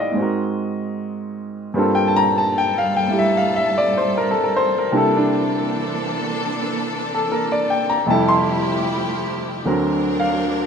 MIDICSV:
0, 0, Header, 1, 3, 480
1, 0, Start_track
1, 0, Tempo, 790514
1, 1066, Time_signature, 4, 2, 24, 8
1, 6475, End_track
2, 0, Start_track
2, 0, Title_t, "Grand piano"
2, 0, Program_c, 0, 0
2, 0, Control_c, 0, 64, 127
2, 0, Note_on_c, 0, 45, 62
2, 0, Note_on_c, 0, 55, 53
2, 0, Note_on_c, 0, 60, 50
2, 0, Note_on_c, 0, 63, 55
2, 0, Note_on_c, 0, 69, 63
2, 0, Note_on_c, 0, 74, 48
2, 0, Note_on_c, 0, 75, 65
2, 0, Note_on_c, 0, 77, 75
2, 0, Note_on_c, 0, 79, 85
2, 68, Note_on_c, 0, 44, 51
2, 84, Note_on_c, 0, 56, 48
2, 93, Note_off_c, 0, 45, 0
2, 94, Note_off_c, 0, 60, 0
2, 97, Note_off_c, 0, 55, 0
2, 103, Note_on_c, 0, 60, 47
2, 105, Note_off_c, 0, 63, 0
2, 107, Note_off_c, 0, 77, 0
2, 107, Control_c, 0, 64, 0
2, 108, Note_off_c, 0, 69, 0
2, 111, Note_off_c, 0, 74, 0
2, 113, Note_off_c, 0, 79, 0
2, 118, Note_on_c, 0, 66, 48
2, 134, Note_on_c, 0, 70, 56
2, 229, Control_c, 0, 64, 127
2, 419, Note_off_c, 0, 75, 0
2, 1050, Note_off_c, 0, 44, 0
2, 1056, Note_on_c, 0, 43, 54
2, 1058, Note_off_c, 0, 56, 0
2, 1059, Note_on_c, 0, 55, 52
2, 1063, Note_off_c, 0, 60, 0
2, 1067, Note_on_c, 0, 58, 50
2, 1072, Note_on_c, 0, 60, 51
2, 1073, Control_c, 0, 64, 0
2, 1075, Note_off_c, 0, 66, 0
2, 1078, Note_on_c, 0, 65, 50
2, 1083, Note_off_c, 0, 70, 0
2, 1087, Note_on_c, 0, 69, 63
2, 1182, Control_c, 0, 64, 127
2, 1184, Note_on_c, 0, 79, 85
2, 1230, Note_off_c, 0, 79, 0
2, 1262, Note_on_c, 0, 81, 80
2, 1315, Note_on_c, 0, 82, 101
2, 1406, Note_off_c, 0, 81, 0
2, 1428, Note_off_c, 0, 82, 0
2, 1444, Note_on_c, 0, 81, 79
2, 1533, Note_off_c, 0, 81, 0
2, 1567, Note_on_c, 0, 79, 88
2, 1688, Note_on_c, 0, 77, 88
2, 1717, Note_off_c, 0, 79, 0
2, 1801, Note_on_c, 0, 79, 86
2, 1858, Note_off_c, 0, 77, 0
2, 1861, Note_off_c, 0, 55, 0
2, 1870, Note_on_c, 0, 55, 39
2, 1877, Note_on_c, 0, 57, 36
2, 1886, Note_on_c, 0, 64, 37
2, 1891, Note_on_c, 0, 67, 46
2, 1912, Note_off_c, 0, 79, 0
2, 1934, Note_on_c, 0, 76, 72
2, 2019, Note_off_c, 0, 76, 0
2, 2048, Note_on_c, 0, 77, 85
2, 2164, Note_on_c, 0, 76, 86
2, 2197, Note_off_c, 0, 77, 0
2, 2294, Note_on_c, 0, 74, 85
2, 2336, Note_off_c, 0, 76, 0
2, 2399, Note_off_c, 0, 74, 0
2, 2414, Note_on_c, 0, 72, 70
2, 2499, Note_off_c, 0, 72, 0
2, 2536, Note_on_c, 0, 70, 80
2, 2608, Note_off_c, 0, 69, 0
2, 2617, Note_on_c, 0, 69, 66
2, 2629, Note_off_c, 0, 70, 0
2, 2668, Note_off_c, 0, 69, 0
2, 2694, Note_on_c, 0, 70, 68
2, 2772, Note_on_c, 0, 72, 88
2, 2843, Note_off_c, 0, 70, 0
2, 2878, Note_off_c, 0, 72, 0
2, 2905, Note_on_c, 0, 70, 67
2, 2981, Note_off_c, 0, 55, 0
2, 2981, Note_off_c, 0, 58, 0
2, 2984, Note_off_c, 0, 64, 0
2, 2984, Note_off_c, 0, 70, 0
2, 2985, Note_off_c, 0, 43, 0
2, 2988, Note_on_c, 0, 48, 48
2, 2990, Note_off_c, 0, 57, 0
2, 2990, Note_on_c, 0, 55, 44
2, 2990, Note_on_c, 0, 58, 45
2, 2992, Note_on_c, 0, 62, 43
2, 2993, Note_off_c, 0, 60, 0
2, 2993, Note_on_c, 0, 64, 45
2, 2996, Note_off_c, 0, 65, 0
2, 2997, Note_off_c, 0, 67, 0
2, 2997, Note_on_c, 0, 69, 52
2, 2998, Control_c, 0, 64, 0
2, 3010, Note_off_c, 0, 69, 0
2, 3019, Note_on_c, 0, 69, 73
2, 3107, Control_c, 0, 64, 127
2, 3128, Note_off_c, 0, 62, 0
2, 3137, Note_on_c, 0, 62, 67
2, 3162, Note_off_c, 0, 69, 0
2, 3239, Note_off_c, 0, 62, 0
2, 4339, Note_on_c, 0, 69, 67
2, 4418, Note_off_c, 0, 69, 0
2, 4444, Note_on_c, 0, 70, 70
2, 4567, Note_on_c, 0, 74, 70
2, 4592, Note_off_c, 0, 70, 0
2, 4677, Note_on_c, 0, 79, 79
2, 4733, Note_off_c, 0, 74, 0
2, 4786, Note_off_c, 0, 79, 0
2, 4794, Note_on_c, 0, 82, 85
2, 4884, Note_off_c, 0, 82, 0
2, 4893, Note_off_c, 0, 48, 0
2, 4896, Note_on_c, 0, 41, 59
2, 4899, Note_off_c, 0, 55, 0
2, 4902, Note_off_c, 0, 58, 0
2, 4902, Note_on_c, 0, 48, 55
2, 4904, Note_off_c, 0, 64, 0
2, 4908, Note_on_c, 0, 55, 57
2, 4910, Control_c, 0, 64, 0
2, 4920, Note_on_c, 0, 64, 57
2, 4921, Note_on_c, 0, 81, 84
2, 4925, Note_on_c, 0, 69, 67
2, 5007, Control_c, 0, 64, 127
2, 5031, Note_on_c, 0, 84, 84
2, 5068, Note_off_c, 0, 81, 0
2, 5138, Note_off_c, 0, 84, 0
2, 5855, Note_off_c, 0, 41, 0
2, 5858, Note_off_c, 0, 48, 0
2, 5861, Note_off_c, 0, 55, 0
2, 5862, Note_on_c, 0, 38, 51
2, 5862, Note_on_c, 0, 50, 44
2, 5867, Note_off_c, 0, 64, 0
2, 5867, Control_c, 0, 64, 0
2, 5868, Note_on_c, 0, 54, 50
2, 5869, Note_on_c, 0, 70, 57
2, 5870, Note_off_c, 0, 69, 0
2, 5871, Note_on_c, 0, 60, 47
2, 5985, Control_c, 0, 64, 127
2, 6191, Note_on_c, 0, 77, 82
2, 6475, Note_off_c, 0, 38, 0
2, 6475, Note_off_c, 0, 50, 0
2, 6475, Note_off_c, 0, 54, 0
2, 6475, Note_off_c, 0, 60, 0
2, 6475, Note_off_c, 0, 70, 0
2, 6475, Note_off_c, 0, 77, 0
2, 6475, End_track
3, 0, Start_track
3, 0, Title_t, "String section"
3, 0, Program_c, 1, 48
3, 1072, Note_on_c, 1, 60, 63
3, 1073, Note_on_c, 1, 69, 78
3, 1077, Note_on_c, 1, 55, 71
3, 2974, Note_off_c, 1, 69, 0
3, 2976, Note_off_c, 1, 55, 0
3, 2997, Note_on_c, 1, 62, 71
3, 2999, Note_on_c, 1, 52, 70
3, 2999, Note_on_c, 1, 58, 67
3, 3001, Note_on_c, 1, 69, 82
3, 4881, Note_off_c, 1, 60, 0
3, 4887, Note_off_c, 1, 58, 0
3, 4887, Note_off_c, 1, 62, 0
3, 4888, Note_off_c, 1, 52, 0
3, 4888, Note_off_c, 1, 69, 0
3, 4896, Note_on_c, 1, 64, 69
3, 4899, Note_on_c, 1, 57, 68
3, 4904, Note_on_c, 1, 67, 83
3, 4906, Note_on_c, 1, 53, 73
3, 5846, Note_off_c, 1, 64, 0
3, 5847, Note_off_c, 1, 57, 0
3, 5849, Note_off_c, 1, 67, 0
3, 5850, Note_off_c, 1, 53, 0
3, 5857, Note_on_c, 1, 60, 63
3, 5858, Note_on_c, 1, 54, 71
3, 5858, Note_on_c, 1, 62, 65
3, 5863, Note_on_c, 1, 70, 83
3, 6475, Note_off_c, 1, 54, 0
3, 6475, Note_off_c, 1, 60, 0
3, 6475, Note_off_c, 1, 62, 0
3, 6475, Note_off_c, 1, 70, 0
3, 6475, End_track
0, 0, End_of_file